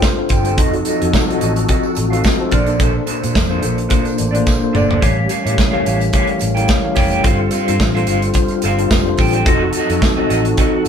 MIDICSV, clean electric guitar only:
0, 0, Header, 1, 3, 480
1, 0, Start_track
1, 0, Tempo, 555556
1, 500, Time_signature, 4, 2, 24, 8
1, 9404, End_track
2, 0, Start_track
2, 0, Title_t, "Clean electric guitar"
2, 0, Program_c, 0, 27
2, 265, Note_on_c, 0, 69, 71
2, 271, Note_on_c, 0, 72, 73
2, 278, Note_on_c, 0, 79, 79
2, 385, Note_off_c, 0, 79, 0
2, 395, Note_on_c, 0, 79, 58
2, 396, Note_off_c, 0, 72, 0
2, 401, Note_off_c, 0, 69, 0
2, 406, Note_on_c, 0, 72, 62
2, 411, Note_on_c, 0, 69, 50
2, 490, Note_off_c, 0, 69, 0
2, 494, Note_on_c, 0, 66, 77
2, 501, Note_off_c, 0, 79, 0
2, 502, Note_off_c, 0, 72, 0
2, 505, Note_on_c, 0, 75, 100
2, 506, Note_on_c, 0, 69, 79
2, 624, Note_off_c, 0, 75, 0
2, 630, Note_off_c, 0, 69, 0
2, 692, Note_off_c, 0, 66, 0
2, 738, Note_on_c, 0, 66, 67
2, 744, Note_on_c, 0, 69, 70
2, 753, Note_on_c, 0, 75, 77
2, 863, Note_off_c, 0, 75, 0
2, 871, Note_off_c, 0, 69, 0
2, 873, Note_on_c, 0, 75, 60
2, 881, Note_off_c, 0, 66, 0
2, 881, Note_on_c, 0, 69, 59
2, 891, Note_on_c, 0, 66, 51
2, 964, Note_off_c, 0, 66, 0
2, 971, Note_off_c, 0, 69, 0
2, 979, Note_off_c, 0, 75, 0
2, 1118, Note_on_c, 0, 75, 76
2, 1127, Note_on_c, 0, 69, 72
2, 1131, Note_on_c, 0, 66, 61
2, 1215, Note_off_c, 0, 66, 0
2, 1223, Note_off_c, 0, 69, 0
2, 1225, Note_on_c, 0, 66, 53
2, 1229, Note_off_c, 0, 75, 0
2, 1234, Note_on_c, 0, 69, 52
2, 1240, Note_on_c, 0, 75, 65
2, 1344, Note_off_c, 0, 75, 0
2, 1351, Note_off_c, 0, 69, 0
2, 1382, Note_off_c, 0, 66, 0
2, 1457, Note_on_c, 0, 66, 77
2, 1460, Note_on_c, 0, 69, 83
2, 1470, Note_on_c, 0, 75, 86
2, 1581, Note_off_c, 0, 75, 0
2, 1593, Note_off_c, 0, 69, 0
2, 1653, Note_off_c, 0, 66, 0
2, 1817, Note_on_c, 0, 77, 55
2, 1826, Note_on_c, 0, 69, 48
2, 1830, Note_on_c, 0, 66, 47
2, 1923, Note_off_c, 0, 66, 0
2, 1928, Note_off_c, 0, 69, 0
2, 1938, Note_off_c, 0, 77, 0
2, 2169, Note_on_c, 0, 62, 75
2, 2176, Note_on_c, 0, 69, 68
2, 2182, Note_on_c, 0, 74, 77
2, 2296, Note_off_c, 0, 74, 0
2, 2302, Note_off_c, 0, 69, 0
2, 2306, Note_on_c, 0, 74, 63
2, 2307, Note_off_c, 0, 62, 0
2, 2312, Note_on_c, 0, 69, 55
2, 2317, Note_on_c, 0, 62, 53
2, 2396, Note_off_c, 0, 62, 0
2, 2405, Note_off_c, 0, 69, 0
2, 2407, Note_on_c, 0, 62, 78
2, 2415, Note_on_c, 0, 69, 78
2, 2417, Note_off_c, 0, 74, 0
2, 2420, Note_on_c, 0, 72, 82
2, 2536, Note_off_c, 0, 72, 0
2, 2544, Note_off_c, 0, 69, 0
2, 2608, Note_off_c, 0, 62, 0
2, 2646, Note_on_c, 0, 62, 68
2, 2652, Note_on_c, 0, 69, 72
2, 2661, Note_on_c, 0, 72, 73
2, 2765, Note_off_c, 0, 72, 0
2, 2773, Note_off_c, 0, 69, 0
2, 2775, Note_on_c, 0, 72, 64
2, 2779, Note_off_c, 0, 62, 0
2, 2784, Note_on_c, 0, 69, 53
2, 2790, Note_on_c, 0, 62, 49
2, 2871, Note_off_c, 0, 62, 0
2, 2879, Note_off_c, 0, 69, 0
2, 2884, Note_off_c, 0, 72, 0
2, 3018, Note_on_c, 0, 72, 81
2, 3028, Note_on_c, 0, 69, 63
2, 3030, Note_on_c, 0, 62, 63
2, 3116, Note_off_c, 0, 62, 0
2, 3125, Note_off_c, 0, 69, 0
2, 3126, Note_on_c, 0, 62, 58
2, 3128, Note_off_c, 0, 72, 0
2, 3135, Note_on_c, 0, 69, 64
2, 3138, Note_on_c, 0, 72, 59
2, 3245, Note_off_c, 0, 72, 0
2, 3257, Note_off_c, 0, 69, 0
2, 3292, Note_off_c, 0, 62, 0
2, 3360, Note_on_c, 0, 62, 75
2, 3362, Note_on_c, 0, 69, 81
2, 3369, Note_on_c, 0, 72, 94
2, 3478, Note_off_c, 0, 72, 0
2, 3486, Note_off_c, 0, 69, 0
2, 3565, Note_off_c, 0, 62, 0
2, 3723, Note_on_c, 0, 74, 46
2, 3736, Note_on_c, 0, 69, 44
2, 3739, Note_on_c, 0, 62, 44
2, 3841, Note_off_c, 0, 62, 0
2, 3844, Note_off_c, 0, 69, 0
2, 3856, Note_off_c, 0, 74, 0
2, 4087, Note_on_c, 0, 62, 61
2, 4093, Note_on_c, 0, 69, 79
2, 4098, Note_on_c, 0, 74, 77
2, 4211, Note_off_c, 0, 74, 0
2, 4216, Note_off_c, 0, 69, 0
2, 4220, Note_off_c, 0, 62, 0
2, 4222, Note_on_c, 0, 74, 62
2, 4226, Note_on_c, 0, 69, 54
2, 4230, Note_on_c, 0, 62, 53
2, 4322, Note_off_c, 0, 69, 0
2, 4325, Note_on_c, 0, 67, 85
2, 4326, Note_off_c, 0, 74, 0
2, 4330, Note_on_c, 0, 73, 86
2, 4337, Note_on_c, 0, 77, 100
2, 4370, Note_off_c, 0, 62, 0
2, 4459, Note_off_c, 0, 77, 0
2, 4464, Note_off_c, 0, 73, 0
2, 4528, Note_off_c, 0, 67, 0
2, 4574, Note_on_c, 0, 67, 67
2, 4579, Note_on_c, 0, 73, 64
2, 4589, Note_on_c, 0, 77, 70
2, 4688, Note_off_c, 0, 77, 0
2, 4694, Note_off_c, 0, 73, 0
2, 4699, Note_on_c, 0, 77, 57
2, 4704, Note_off_c, 0, 67, 0
2, 4705, Note_on_c, 0, 73, 56
2, 4714, Note_on_c, 0, 67, 53
2, 4798, Note_off_c, 0, 67, 0
2, 4805, Note_off_c, 0, 73, 0
2, 4809, Note_off_c, 0, 77, 0
2, 4934, Note_on_c, 0, 77, 79
2, 4939, Note_on_c, 0, 73, 63
2, 4951, Note_on_c, 0, 67, 63
2, 5033, Note_off_c, 0, 67, 0
2, 5040, Note_off_c, 0, 73, 0
2, 5043, Note_on_c, 0, 67, 57
2, 5047, Note_off_c, 0, 77, 0
2, 5050, Note_on_c, 0, 73, 64
2, 5057, Note_on_c, 0, 77, 65
2, 5172, Note_off_c, 0, 77, 0
2, 5180, Note_off_c, 0, 73, 0
2, 5212, Note_off_c, 0, 67, 0
2, 5295, Note_on_c, 0, 67, 91
2, 5300, Note_on_c, 0, 73, 91
2, 5306, Note_on_c, 0, 77, 92
2, 5428, Note_off_c, 0, 77, 0
2, 5437, Note_off_c, 0, 73, 0
2, 5494, Note_off_c, 0, 67, 0
2, 5656, Note_on_c, 0, 79, 58
2, 5661, Note_on_c, 0, 73, 51
2, 5671, Note_on_c, 0, 67, 50
2, 5764, Note_off_c, 0, 67, 0
2, 5770, Note_off_c, 0, 73, 0
2, 5779, Note_off_c, 0, 79, 0
2, 6004, Note_on_c, 0, 67, 72
2, 6012, Note_on_c, 0, 73, 85
2, 6018, Note_on_c, 0, 79, 72
2, 6126, Note_off_c, 0, 79, 0
2, 6136, Note_off_c, 0, 67, 0
2, 6136, Note_on_c, 0, 79, 57
2, 6137, Note_off_c, 0, 73, 0
2, 6146, Note_on_c, 0, 67, 46
2, 6147, Note_on_c, 0, 73, 58
2, 6244, Note_off_c, 0, 67, 0
2, 6248, Note_on_c, 0, 69, 83
2, 6252, Note_off_c, 0, 73, 0
2, 6255, Note_on_c, 0, 72, 84
2, 6257, Note_off_c, 0, 79, 0
2, 6260, Note_on_c, 0, 77, 83
2, 6372, Note_off_c, 0, 77, 0
2, 6382, Note_off_c, 0, 72, 0
2, 6450, Note_off_c, 0, 69, 0
2, 6489, Note_on_c, 0, 69, 73
2, 6497, Note_on_c, 0, 72, 71
2, 6497, Note_on_c, 0, 77, 69
2, 6621, Note_off_c, 0, 77, 0
2, 6624, Note_off_c, 0, 72, 0
2, 6631, Note_on_c, 0, 77, 63
2, 6632, Note_off_c, 0, 69, 0
2, 6634, Note_on_c, 0, 72, 57
2, 6642, Note_on_c, 0, 69, 55
2, 6723, Note_off_c, 0, 69, 0
2, 6731, Note_off_c, 0, 72, 0
2, 6733, Note_off_c, 0, 77, 0
2, 6867, Note_on_c, 0, 77, 73
2, 6871, Note_on_c, 0, 72, 63
2, 6877, Note_on_c, 0, 69, 63
2, 6956, Note_off_c, 0, 69, 0
2, 6965, Note_off_c, 0, 72, 0
2, 6967, Note_off_c, 0, 77, 0
2, 6967, Note_on_c, 0, 69, 63
2, 6975, Note_on_c, 0, 72, 67
2, 6978, Note_on_c, 0, 77, 59
2, 7095, Note_off_c, 0, 77, 0
2, 7107, Note_off_c, 0, 72, 0
2, 7134, Note_off_c, 0, 69, 0
2, 7463, Note_on_c, 0, 69, 75
2, 7471, Note_on_c, 0, 72, 86
2, 7479, Note_on_c, 0, 77, 95
2, 7590, Note_off_c, 0, 77, 0
2, 7598, Note_off_c, 0, 72, 0
2, 7658, Note_off_c, 0, 69, 0
2, 7933, Note_on_c, 0, 69, 77
2, 7943, Note_on_c, 0, 72, 81
2, 7949, Note_on_c, 0, 79, 85
2, 8058, Note_off_c, 0, 79, 0
2, 8062, Note_off_c, 0, 72, 0
2, 8067, Note_off_c, 0, 69, 0
2, 8068, Note_on_c, 0, 79, 60
2, 8072, Note_on_c, 0, 72, 57
2, 8078, Note_on_c, 0, 69, 53
2, 8172, Note_off_c, 0, 69, 0
2, 8176, Note_on_c, 0, 66, 98
2, 8179, Note_off_c, 0, 72, 0
2, 8183, Note_on_c, 0, 69, 102
2, 8188, Note_off_c, 0, 79, 0
2, 8191, Note_on_c, 0, 75, 98
2, 8310, Note_off_c, 0, 75, 0
2, 8318, Note_off_c, 0, 69, 0
2, 8374, Note_off_c, 0, 66, 0
2, 8426, Note_on_c, 0, 66, 63
2, 8434, Note_on_c, 0, 69, 71
2, 8442, Note_on_c, 0, 75, 74
2, 8543, Note_off_c, 0, 75, 0
2, 8552, Note_off_c, 0, 69, 0
2, 8553, Note_on_c, 0, 75, 57
2, 8560, Note_off_c, 0, 66, 0
2, 8562, Note_on_c, 0, 69, 59
2, 8570, Note_on_c, 0, 66, 48
2, 8649, Note_off_c, 0, 66, 0
2, 8651, Note_off_c, 0, 69, 0
2, 8656, Note_off_c, 0, 75, 0
2, 8786, Note_on_c, 0, 75, 73
2, 8793, Note_on_c, 0, 69, 64
2, 8801, Note_on_c, 0, 66, 64
2, 8878, Note_off_c, 0, 66, 0
2, 8885, Note_off_c, 0, 69, 0
2, 8889, Note_on_c, 0, 66, 60
2, 8892, Note_off_c, 0, 75, 0
2, 8895, Note_on_c, 0, 69, 65
2, 8903, Note_on_c, 0, 75, 72
2, 9016, Note_off_c, 0, 75, 0
2, 9023, Note_off_c, 0, 69, 0
2, 9054, Note_off_c, 0, 66, 0
2, 9138, Note_on_c, 0, 66, 88
2, 9146, Note_on_c, 0, 69, 92
2, 9151, Note_on_c, 0, 75, 84
2, 9259, Note_off_c, 0, 75, 0
2, 9271, Note_off_c, 0, 69, 0
2, 9334, Note_off_c, 0, 66, 0
2, 9404, End_track
3, 0, Start_track
3, 0, Title_t, "Muted clean electric guitar strokes"
3, 19, Note_on_c, 9, 29, 35
3, 105, Note_off_c, 9, 29, 0
3, 158, Note_on_c, 9, 29, 44
3, 244, Note_off_c, 9, 29, 0
3, 635, Note_on_c, 9, 29, 45
3, 721, Note_off_c, 9, 29, 0
3, 975, Note_on_c, 9, 29, 32
3, 1061, Note_off_c, 9, 29, 0
3, 1355, Note_on_c, 9, 29, 36
3, 1441, Note_off_c, 9, 29, 0
3, 1591, Note_on_c, 9, 29, 42
3, 1678, Note_off_c, 9, 29, 0
3, 1690, Note_on_c, 9, 29, 41
3, 1777, Note_off_c, 9, 29, 0
3, 2069, Note_on_c, 9, 29, 36
3, 2155, Note_off_c, 9, 29, 0
3, 2546, Note_on_c, 9, 29, 53
3, 2633, Note_off_c, 9, 29, 0
3, 2881, Note_on_c, 9, 29, 40
3, 2967, Note_off_c, 9, 29, 0
3, 3255, Note_on_c, 9, 29, 49
3, 3341, Note_off_c, 9, 29, 0
3, 3488, Note_on_c, 9, 29, 39
3, 3574, Note_off_c, 9, 29, 0
3, 3603, Note_on_c, 9, 29, 35
3, 3689, Note_off_c, 9, 29, 0
3, 3852, Note_on_c, 9, 29, 37
3, 3938, Note_off_c, 9, 29, 0
3, 3981, Note_on_c, 9, 29, 39
3, 4067, Note_off_c, 9, 29, 0
3, 4470, Note_on_c, 9, 29, 56
3, 4556, Note_off_c, 9, 29, 0
3, 4808, Note_on_c, 9, 29, 36
3, 4894, Note_off_c, 9, 29, 0
3, 5182, Note_on_c, 9, 29, 36
3, 5268, Note_off_c, 9, 29, 0
3, 5438, Note_on_c, 9, 29, 48
3, 5524, Note_off_c, 9, 29, 0
3, 5538, Note_on_c, 9, 29, 33
3, 5624, Note_off_c, 9, 29, 0
3, 5774, Note_on_c, 9, 29, 40
3, 5861, Note_off_c, 9, 29, 0
3, 5910, Note_on_c, 9, 29, 42
3, 5996, Note_off_c, 9, 29, 0
3, 6382, Note_on_c, 9, 29, 42
3, 6469, Note_off_c, 9, 29, 0
3, 6734, Note_on_c, 9, 29, 45
3, 6820, Note_off_c, 9, 29, 0
3, 7105, Note_on_c, 9, 29, 37
3, 7192, Note_off_c, 9, 29, 0
3, 7353, Note_on_c, 9, 29, 45
3, 7440, Note_off_c, 9, 29, 0
3, 7601, Note_on_c, 9, 29, 45
3, 7687, Note_off_c, 9, 29, 0
3, 7706, Note_on_c, 9, 29, 34
3, 7792, Note_off_c, 9, 29, 0
3, 7836, Note_on_c, 9, 29, 44
3, 7922, Note_off_c, 9, 29, 0
3, 8320, Note_on_c, 9, 29, 49
3, 8407, Note_off_c, 9, 29, 0
3, 8659, Note_on_c, 9, 29, 33
3, 8746, Note_off_c, 9, 29, 0
3, 9027, Note_on_c, 9, 29, 45
3, 9113, Note_off_c, 9, 29, 0
3, 9269, Note_on_c, 9, 29, 44
3, 9356, Note_off_c, 9, 29, 0
3, 9371, Note_on_c, 9, 29, 44
3, 9404, Note_off_c, 9, 29, 0
3, 9404, End_track
0, 0, End_of_file